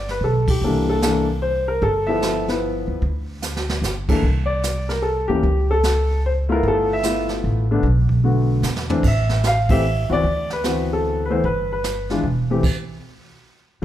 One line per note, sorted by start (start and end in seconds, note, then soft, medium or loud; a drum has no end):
0.00 0.18 G1 medium
0.09 0.24 B4 medium
0.09 snare soft
0.21 0.59 B1 medium
0.21 0.47 A4 medium
0.48 0.90 G4 medium
0.48 kick medium
0.48 ride medium
0.61 1.78 C2 medium
0.61 1.01 E3 medium
0.61 1.01 A#3 soft
0.61 1.01 D4 soft
0.61 0.88 A4 medium
0.61 brush sweep soft
0.90 1.01 A4 medium
1.02 1.26 E3 medium
1.02 1.26 A#3 medium
1.02 1.26 D4 medium
1.02 1.26 A4 medium
1.02 snare medium
1.02 hi-hat pedal soft
1.42 1.69 C5 medium
1.68 1.83 A#4 medium
1.82 2.84 G1 medium
1.82 2.08 A4 medium
1.82 brush sweep soft
1.82 kick soft
2.07 2.46 F3 medium
2.07 2.46 B3 medium
2.07 2.46 E4 medium
2.07 2.46 A4 medium
2.07 2.45 E5 medium
2.22 snare medium
2.22 hi-hat pedal soft
2.48 3.00 F3 soft
2.48 3.00 B3 soft
2.48 3.00 E4 soft
2.48 3.00 B4 medium
2.48 snare soft
2.88 3.01 D#2 medium
3.02 3.78 D2 medium
3.02 brush sweep soft
3.02 kick soft
3.42 snare soft
3.42 hi-hat pedal medium
3.57 snare soft
3.69 snare medium
3.82 4.19 G1 medium
3.82 snare soft
3.82 hi-hat pedal soft
4.09 4.21 E3 medium
4.09 4.22 A#3 soft
4.09 4.22 D4 soft
4.09 4.22 A4 medium
4.09 kick medium
4.09 crash medium
4.23 5.25 C2 medium
4.23 brush sweep soft
4.23 kick soft
4.46 4.89 D5 medium
4.63 snare medium
4.63 hi-hat pedal medium
4.89 5.03 A#4 medium
4.89 snare soft
5.02 5.29 A4 medium
5.28 5.42 D2 medium
5.28 5.42 E3 medium
5.28 5.42 A#3 soft
5.28 5.42 C#4 soft
5.28 5.70 G4 medium
5.43 6.59 C#2 medium
5.43 brush sweep soft
5.43 kick soft
5.71 6.20 A4 medium
5.83 snare medium
5.83 hi-hat pedal soft
6.26 6.31 C5 medium
6.49 7.00 A3 medium
6.49 7.01 B3 medium
6.49 7.00 E4 medium
6.49 7.01 F4 medium
6.49 6.65 A#4 medium
6.63 7.39 G1 medium
6.63 brush sweep soft
6.63 kick soft
6.68 6.90 A4 medium
6.93 7.29 E5 medium
7.03 7.65 A3 medium
7.03 7.65 B3 soft
7.03 7.65 E4 medium
7.03 7.65 F4 medium
7.03 snare medium
7.03 hi-hat pedal medium
7.29 snare soft
7.44 7.81 A1 medium
7.71 7.83 D3 medium
7.71 7.83 A3 medium
7.71 7.83 B3 medium
7.71 7.83 D4 medium
7.83 8.59 B1 medium
7.83 brush sweep soft
7.83 kick soft
8.09 kick soft
8.24 8.64 D3 soft
8.24 8.64 A3 soft
8.24 8.64 B3 soft
8.24 8.64 F#4 medium
8.62 9.00 E2 medium
8.62 snare soft
8.62 hi-hat pedal medium
8.76 snare soft
8.90 9.02 E3 medium
8.90 9.02 A3 medium
8.90 9.02 C4 medium
8.90 9.02 D4 medium
8.90 floor tom medium
9.03 10.05 A1 medium
9.03 brush sweep soft
9.03 kick medium
9.03 crash medium
9.08 9.43 E5 medium
9.29 snare soft
9.44 9.72 F5 medium
9.44 snare medium
9.44 hi-hat pedal soft
9.69 9.82 E3 medium
9.69 9.82 A3 medium
9.69 9.83 C4 medium
9.69 9.83 G4 medium
9.69 10.11 E5 medium
9.69 kick medium
9.69 ride medium
10.09 10.22 C#2 medium
10.09 10.22 E3 medium
10.09 10.22 B3 medium
10.09 10.22 C4 medium
10.09 10.22 F#4 medium
10.09 10.48 D5 loud
10.24 11.39 D2 medium
10.24 brush sweep soft
10.24 kick soft
10.50 10.88 B4 medium
10.50 snare soft
10.64 11.24 E3 soft
10.64 11.24 B3 soft
10.64 11.25 C4 soft
10.64 11.25 F#4 medium
10.64 snare soft
10.64 hi-hat pedal soft
10.93 11.22 A4 medium
11.25 11.31 B4 medium
11.30 11.42 E3 medium
11.30 11.42 A3 medium
11.30 11.43 B3 medium
11.30 11.43 E4 medium
11.30 11.44 C5 medium
11.44 12.20 G1 medium
11.44 11.71 B4 medium
11.44 brush sweep soft
11.44 kick soft
11.73 12.21 B4 medium
11.84 snare medium
11.84 hi-hat pedal medium
12.10 12.23 E3 medium
12.10 12.23 G#3 soft
12.10 12.23 D4 medium
12.10 12.23 F4 medium
12.10 snare soft
12.23 12.60 E1 medium
12.50 12.63 E3 medium
12.50 12.62 A3 soft
12.50 12.63 C4 soft
12.50 12.63 G4 medium
12.63 kick medium
12.63 crash medium